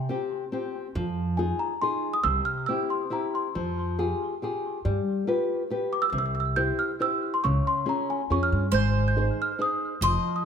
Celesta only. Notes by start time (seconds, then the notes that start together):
Already playing: G5
1.37 G#5
1.59 A#5
1.82 C6
2.14 D#6
2.24 E6
2.45 F6
2.66 E6
2.90 C6
3.13 A#5
3.35 C6
5.93 D6
6.02 E6
6.10 E6
6.18 E6
6.26 E6
6.35 E6
6.40 E6
6.56 G6
6.79 F6
7.02 E6
7.34 C6
7.44 C#6
7.67 C6
7.89 A#5
8.10 G#5
8.32 C#6
8.43 F6
8.75 G6
9.08 G6
9.42 F6
9.62 D#6
10.04 C6
10.36 D#6